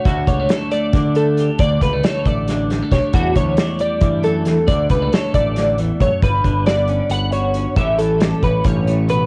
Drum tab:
HH |xxxxxxx|xxxxxxx|xxxxxxx|xxxxxxx|
SD |--o-o--|--o-ooo|--o---o|--o-o--|
BD |oo--o--|oo-o--o|oo--o--|oo-o--o|

HH |xxxxxxx|xxxxxxx|
SD |--o----|--o----|
BD |oo-----|o--oo--|